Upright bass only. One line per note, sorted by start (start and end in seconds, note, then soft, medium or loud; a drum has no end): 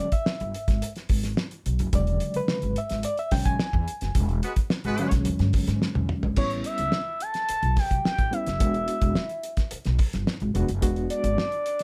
0.12 muted upright bass stroke soft
0.41 0.52 G1 loud
0.68 0.80 G#1 medium
1.10 1.33 G#1 medium
1.66 1.77 B1 medium
1.80 1.91 F#1 loud
1.93 2.17 E1 loud
2.35 muted upright bass stroke soft
2.63 2.74 G#1 medium
2.91 3.02 G#1 medium
3.32 3.56 B1 medium
3.74 3.85 E2 loud
4.02 4.13 F#1 medium
4.15 4.39 E1 loud
4.57 muted upright bass stroke soft
4.85 4.96 G#1 loud
5.13 5.24 B1 medium
5.26 5.38 E2 loud
5.40 5.52 G2 loud
5.68 5.80 G#2 loud
5.96 6.07 E2 medium
6.24 6.36 G#1 medium
6.37 6.61 A1 loud
6.79 6.91 C#2 medium
7.49 muted upright bass stroke soft
7.63 7.74 B1 loud
7.91 8.03 B1 medium
8.05 muted upright bass stroke medium
8.19 8.30 A1 medium
8.47 8.61 F#1 medium
8.61 8.84 E1 loud
9.02 9.14 E1 loud
9.72 muted upright bass stroke soft
9.86 9.97 B1 loud
10.14 10.25 G1 loud
10.42 10.53 G#1 medium
10.55 10.67 E1 loud
10.69 10.83 F#1 medium
10.83 11.06 E1 loud
11.24 11.35 G#1 medium